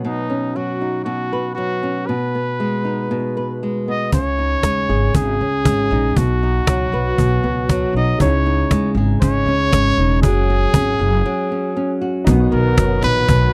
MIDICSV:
0, 0, Header, 1, 7, 480
1, 0, Start_track
1, 0, Key_signature, 5, "major"
1, 0, Tempo, 509338
1, 37, Time_signature, 4, 2, 24, 8
1, 12751, End_track
2, 0, Start_track
2, 0, Title_t, "Trumpet"
2, 0, Program_c, 0, 56
2, 54, Note_on_c, 0, 63, 79
2, 531, Note_on_c, 0, 66, 77
2, 545, Note_off_c, 0, 63, 0
2, 979, Note_off_c, 0, 66, 0
2, 984, Note_on_c, 0, 66, 78
2, 1438, Note_off_c, 0, 66, 0
2, 1458, Note_on_c, 0, 66, 86
2, 1949, Note_on_c, 0, 71, 89
2, 1963, Note_off_c, 0, 66, 0
2, 3398, Note_off_c, 0, 71, 0
2, 3652, Note_on_c, 0, 75, 94
2, 3872, Note_off_c, 0, 75, 0
2, 3904, Note_on_c, 0, 73, 98
2, 4818, Note_off_c, 0, 73, 0
2, 4864, Note_on_c, 0, 68, 97
2, 5813, Note_on_c, 0, 66, 89
2, 5827, Note_off_c, 0, 68, 0
2, 7491, Note_off_c, 0, 66, 0
2, 7507, Note_on_c, 0, 75, 87
2, 7721, Note_off_c, 0, 75, 0
2, 7742, Note_on_c, 0, 73, 91
2, 8402, Note_off_c, 0, 73, 0
2, 8682, Note_on_c, 0, 73, 113
2, 9606, Note_off_c, 0, 73, 0
2, 9633, Note_on_c, 0, 68, 105
2, 11277, Note_off_c, 0, 68, 0
2, 11807, Note_on_c, 0, 70, 84
2, 12247, Note_off_c, 0, 70, 0
2, 12288, Note_on_c, 0, 71, 110
2, 12751, Note_off_c, 0, 71, 0
2, 12751, End_track
3, 0, Start_track
3, 0, Title_t, "Upright piano"
3, 0, Program_c, 1, 0
3, 7708, Note_on_c, 1, 56, 57
3, 7723, Note_on_c, 1, 63, 62
3, 7735, Note_on_c, 1, 64, 53
3, 7743, Note_on_c, 1, 73, 73
3, 7877, Control_c, 1, 64, 127
3, 9598, Note_off_c, 1, 56, 0
3, 9606, Note_off_c, 1, 63, 0
3, 9612, Note_off_c, 1, 64, 0
3, 9616, Note_off_c, 1, 73, 0
3, 9620, Note_on_c, 1, 54, 53
3, 9631, Note_on_c, 1, 61, 59
3, 9646, Note_on_c, 1, 66, 59
3, 9659, Note_on_c, 1, 73, 69
3, 9660, Control_c, 1, 64, 0
3, 9678, Note_on_c, 1, 56, 63
3, 9690, Note_off_c, 1, 54, 0
3, 9821, Control_c, 1, 64, 127
3, 11515, Note_off_c, 1, 61, 0
3, 11522, Note_off_c, 1, 66, 0
3, 11529, Note_off_c, 1, 73, 0
3, 11538, Note_off_c, 1, 56, 0
3, 11539, Note_on_c, 1, 63, 75
3, 11562, Note_on_c, 1, 66, 80
3, 11572, Control_c, 1, 64, 0
3, 11582, Note_on_c, 1, 59, 93
3, 11762, Control_c, 1, 64, 127
3, 12751, Note_off_c, 1, 59, 0
3, 12751, Note_off_c, 1, 63, 0
3, 12751, Note_off_c, 1, 66, 0
3, 12751, End_track
4, 0, Start_track
4, 0, Title_t, "Nylon-string guitar"
4, 0, Program_c, 2, 24
4, 0, Note_on_c, 2, 54, 57
4, 0, Note_on_c, 2, 59, 53
4, 0, Note_on_c, 2, 71, 60
4, 43, Note_on_c, 2, 47, 72
4, 275, Note_off_c, 2, 59, 0
4, 279, Note_on_c, 2, 61, 60
4, 307, Note_off_c, 2, 71, 0
4, 522, Note_off_c, 2, 54, 0
4, 525, Note_on_c, 2, 54, 55
4, 768, Note_on_c, 2, 63, 49
4, 986, Note_off_c, 2, 47, 0
4, 997, Note_on_c, 2, 47, 75
4, 1250, Note_on_c, 2, 71, 57
4, 1475, Note_off_c, 2, 54, 0
4, 1486, Note_on_c, 2, 54, 65
4, 1715, Note_off_c, 2, 61, 0
4, 1726, Note_on_c, 2, 61, 59
4, 1957, Note_off_c, 2, 47, 0
4, 1969, Note_on_c, 2, 47, 73
4, 2012, Note_off_c, 2, 54, 0
4, 2012, Note_off_c, 2, 61, 0
4, 2014, Note_off_c, 2, 71, 0
4, 2215, Note_on_c, 2, 59, 50
4, 2450, Note_on_c, 2, 56, 60
4, 2680, Note_off_c, 2, 63, 0
4, 2683, Note_on_c, 2, 63, 47
4, 2918, Note_off_c, 2, 47, 0
4, 2930, Note_on_c, 2, 47, 70
4, 3174, Note_on_c, 2, 71, 56
4, 3416, Note_off_c, 2, 56, 0
4, 3420, Note_on_c, 2, 56, 60
4, 3644, Note_off_c, 2, 59, 0
4, 3656, Note_on_c, 2, 59, 49
4, 3891, Note_off_c, 2, 47, 0
4, 3894, Note_on_c, 2, 49, 77
4, 3938, Note_off_c, 2, 59, 0
4, 3938, Note_off_c, 2, 71, 0
4, 3941, Note_off_c, 2, 56, 0
4, 4130, Note_off_c, 2, 63, 0
4, 4133, Note_on_c, 2, 63, 57
4, 4376, Note_on_c, 2, 56, 60
4, 4612, Note_on_c, 2, 68, 56
4, 4843, Note_off_c, 2, 49, 0
4, 4854, Note_on_c, 2, 49, 77
4, 5101, Note_on_c, 2, 61, 55
4, 5324, Note_off_c, 2, 56, 0
4, 5336, Note_on_c, 2, 56, 59
4, 5576, Note_off_c, 2, 63, 0
4, 5580, Note_on_c, 2, 63, 61
4, 5811, Note_off_c, 2, 49, 0
4, 5818, Note_on_c, 2, 47, 69
4, 5859, Note_off_c, 2, 68, 0
4, 5860, Note_off_c, 2, 56, 0
4, 5862, Note_off_c, 2, 61, 0
4, 6056, Note_off_c, 2, 63, 0
4, 6060, Note_on_c, 2, 63, 53
4, 6297, Note_on_c, 2, 54, 60
4, 6535, Note_on_c, 2, 71, 64
4, 6760, Note_off_c, 2, 47, 0
4, 6771, Note_on_c, 2, 47, 78
4, 7010, Note_on_c, 2, 59, 60
4, 7253, Note_off_c, 2, 54, 0
4, 7265, Note_on_c, 2, 54, 69
4, 7502, Note_off_c, 2, 63, 0
4, 7506, Note_on_c, 2, 63, 61
4, 7730, Note_off_c, 2, 47, 0
4, 7740, Note_on_c, 2, 49, 78
4, 7777, Note_off_c, 2, 59, 0
4, 7780, Note_off_c, 2, 71, 0
4, 7785, Note_off_c, 2, 54, 0
4, 7785, Note_off_c, 2, 63, 0
4, 7976, Note_on_c, 2, 63, 62
4, 8217, Note_on_c, 2, 56, 71
4, 8456, Note_on_c, 2, 68, 62
4, 8674, Note_off_c, 2, 49, 0
4, 8685, Note_on_c, 2, 49, 80
4, 8935, Note_on_c, 2, 61, 61
4, 9172, Note_off_c, 2, 56, 0
4, 9176, Note_on_c, 2, 56, 65
4, 9407, Note_off_c, 2, 63, 0
4, 9419, Note_on_c, 2, 63, 61
4, 9653, Note_off_c, 2, 56, 0
4, 9656, Note_on_c, 2, 54, 80
4, 9693, Note_off_c, 2, 49, 0
4, 9698, Note_off_c, 2, 61, 0
4, 9698, Note_off_c, 2, 68, 0
4, 9700, Note_off_c, 2, 63, 0
4, 9894, Note_on_c, 2, 66, 65
4, 10137, Note_on_c, 2, 61, 70
4, 10376, Note_on_c, 2, 68, 65
4, 10603, Note_off_c, 2, 54, 0
4, 10607, Note_on_c, 2, 54, 80
4, 10841, Note_off_c, 2, 61, 0
4, 10852, Note_on_c, 2, 61, 53
4, 11076, Note_off_c, 2, 61, 0
4, 11087, Note_on_c, 2, 61, 72
4, 11318, Note_off_c, 2, 66, 0
4, 11322, Note_on_c, 2, 66, 61
4, 11559, Note_on_c, 2, 47, 84
4, 11608, Note_off_c, 2, 66, 0
4, 11609, Note_off_c, 2, 54, 0
4, 11610, Note_off_c, 2, 61, 0
4, 11613, Note_off_c, 2, 68, 0
4, 11802, Note_on_c, 2, 59, 66
4, 12037, Note_on_c, 2, 54, 66
4, 12275, Note_on_c, 2, 63, 57
4, 12512, Note_off_c, 2, 47, 0
4, 12523, Note_on_c, 2, 47, 75
4, 12751, Note_off_c, 2, 47, 0
4, 12751, Note_off_c, 2, 54, 0
4, 12751, Note_off_c, 2, 59, 0
4, 12751, Note_off_c, 2, 63, 0
4, 12751, End_track
5, 0, Start_track
5, 0, Title_t, "Tonewheel organ"
5, 0, Program_c, 3, 16
5, 11554, Note_on_c, 3, 54, 53
5, 11561, Note_on_c, 3, 59, 53
5, 11562, Note_on_c, 3, 51, 60
5, 11564, Note_on_c, 3, 66, 59
5, 12751, Note_off_c, 3, 51, 0
5, 12751, Note_off_c, 3, 54, 0
5, 12751, Note_off_c, 3, 59, 0
5, 12751, Note_off_c, 3, 66, 0
5, 12751, End_track
6, 0, Start_track
6, 0, Title_t, "Upright bass"
6, 0, Program_c, 4, 32
6, 3885, Note_on_c, 4, 37, 93
6, 4279, Note_off_c, 4, 37, 0
6, 4368, Note_on_c, 4, 39, 77
6, 4564, Note_off_c, 4, 39, 0
6, 4609, Note_on_c, 4, 32, 74
6, 4805, Note_off_c, 4, 32, 0
6, 4851, Note_on_c, 4, 32, 69
6, 5046, Note_off_c, 4, 32, 0
6, 5095, Note_on_c, 4, 37, 73
6, 5288, Note_off_c, 4, 37, 0
6, 5327, Note_on_c, 4, 32, 84
6, 5524, Note_off_c, 4, 32, 0
6, 5566, Note_on_c, 4, 34, 85
6, 5764, Note_off_c, 4, 34, 0
6, 5810, Note_on_c, 4, 35, 91
6, 6203, Note_off_c, 4, 35, 0
6, 6289, Note_on_c, 4, 37, 76
6, 6485, Note_off_c, 4, 37, 0
6, 6522, Note_on_c, 4, 35, 79
6, 6722, Note_off_c, 4, 35, 0
6, 6766, Note_on_c, 4, 35, 80
6, 6964, Note_off_c, 4, 35, 0
6, 7004, Note_on_c, 4, 37, 76
6, 7400, Note_off_c, 4, 37, 0
6, 7472, Note_on_c, 4, 35, 74
6, 7676, Note_off_c, 4, 35, 0
6, 7728, Note_on_c, 4, 37, 89
6, 8122, Note_off_c, 4, 37, 0
6, 8204, Note_on_c, 4, 39, 74
6, 8402, Note_off_c, 4, 39, 0
6, 8430, Note_on_c, 4, 32, 90
6, 8634, Note_off_c, 4, 32, 0
6, 8688, Note_on_c, 4, 32, 68
6, 8884, Note_off_c, 4, 32, 0
6, 8912, Note_on_c, 4, 37, 83
6, 9115, Note_off_c, 4, 37, 0
6, 9162, Note_on_c, 4, 32, 76
6, 9360, Note_off_c, 4, 32, 0
6, 9401, Note_on_c, 4, 28, 89
6, 9645, Note_off_c, 4, 28, 0
6, 9645, Note_on_c, 4, 30, 108
6, 10038, Note_off_c, 4, 30, 0
6, 10120, Note_on_c, 4, 32, 79
6, 10318, Note_off_c, 4, 32, 0
6, 10358, Note_on_c, 4, 30, 92
6, 10557, Note_off_c, 4, 30, 0
6, 11560, Note_on_c, 4, 35, 98
6, 11756, Note_off_c, 4, 35, 0
6, 11798, Note_on_c, 4, 35, 94
6, 11994, Note_off_c, 4, 35, 0
6, 12040, Note_on_c, 4, 30, 87
6, 12235, Note_off_c, 4, 30, 0
6, 12289, Note_on_c, 4, 34, 92
6, 12480, Note_off_c, 4, 34, 0
6, 12518, Note_on_c, 4, 35, 89
6, 12713, Note_off_c, 4, 35, 0
6, 12751, End_track
7, 0, Start_track
7, 0, Title_t, "Cajon"
7, 3887, Note_on_c, 9, 36, 93
7, 3981, Note_off_c, 9, 36, 0
7, 4366, Note_on_c, 9, 36, 88
7, 4367, Note_on_c, 9, 38, 94
7, 4460, Note_off_c, 9, 36, 0
7, 4461, Note_off_c, 9, 38, 0
7, 4849, Note_on_c, 9, 36, 102
7, 4943, Note_off_c, 9, 36, 0
7, 5328, Note_on_c, 9, 38, 89
7, 5329, Note_on_c, 9, 36, 81
7, 5423, Note_off_c, 9, 36, 0
7, 5423, Note_off_c, 9, 38, 0
7, 5810, Note_on_c, 9, 36, 101
7, 5904, Note_off_c, 9, 36, 0
7, 6288, Note_on_c, 9, 36, 90
7, 6290, Note_on_c, 9, 38, 106
7, 6382, Note_off_c, 9, 36, 0
7, 6384, Note_off_c, 9, 38, 0
7, 6770, Note_on_c, 9, 36, 94
7, 6865, Note_off_c, 9, 36, 0
7, 7250, Note_on_c, 9, 36, 93
7, 7252, Note_on_c, 9, 38, 84
7, 7344, Note_off_c, 9, 36, 0
7, 7346, Note_off_c, 9, 38, 0
7, 7728, Note_on_c, 9, 36, 101
7, 7822, Note_off_c, 9, 36, 0
7, 8206, Note_on_c, 9, 36, 86
7, 8208, Note_on_c, 9, 38, 98
7, 8300, Note_off_c, 9, 36, 0
7, 8302, Note_off_c, 9, 38, 0
7, 8687, Note_on_c, 9, 36, 98
7, 8781, Note_off_c, 9, 36, 0
7, 9165, Note_on_c, 9, 36, 93
7, 9170, Note_on_c, 9, 38, 92
7, 9259, Note_off_c, 9, 36, 0
7, 9264, Note_off_c, 9, 38, 0
7, 9643, Note_on_c, 9, 36, 111
7, 9737, Note_off_c, 9, 36, 0
7, 10119, Note_on_c, 9, 38, 99
7, 10120, Note_on_c, 9, 36, 98
7, 10214, Note_off_c, 9, 36, 0
7, 10214, Note_off_c, 9, 38, 0
7, 11562, Note_on_c, 9, 36, 103
7, 11656, Note_off_c, 9, 36, 0
7, 12039, Note_on_c, 9, 36, 104
7, 12042, Note_on_c, 9, 38, 122
7, 12134, Note_off_c, 9, 36, 0
7, 12136, Note_off_c, 9, 38, 0
7, 12275, Note_on_c, 9, 38, 99
7, 12369, Note_off_c, 9, 38, 0
7, 12520, Note_on_c, 9, 36, 108
7, 12614, Note_off_c, 9, 36, 0
7, 12751, End_track
0, 0, End_of_file